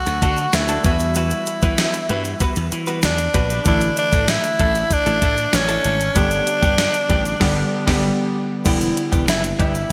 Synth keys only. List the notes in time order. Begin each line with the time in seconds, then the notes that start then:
Already playing: D3 F#3 A3 F#4
0.83 E3 G3 B3 F#4
3.65 D3 E3 A3 E4
6.15 D3 G3 B3 G4
7.40 D3 G3 B3 G4
7.86 D3 G3 B3 G4
8.64 D3 G3 B3 E4